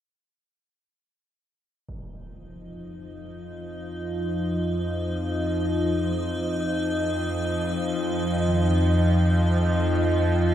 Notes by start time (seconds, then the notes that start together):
1.86 D#4 D#5, impact
1.91 F2 F3
5.18 F2
6.11 C4
8.47 D#3